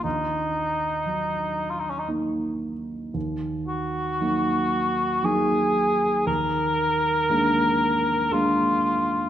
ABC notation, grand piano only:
X:1
M:3/4
L:1/8
Q:1/4=58
K:Ebm
V:1 name="Grand piano"
E,,2 G,2 [B,E]2 | E,,2 [G,B,E]2 [G,B,E]2 | E,,2 [A,B,=D]2 [A,B,D]2 |]